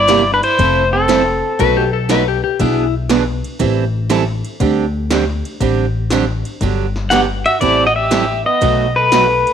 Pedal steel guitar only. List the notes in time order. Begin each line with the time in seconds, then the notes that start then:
Already playing: D5
0.34 B4
0.44 C5
0.93 A4
7.10 F#5
7.46 E5
7.61 D5
7.87 D#5
7.96 E5
8.46 D#5
8.96 B4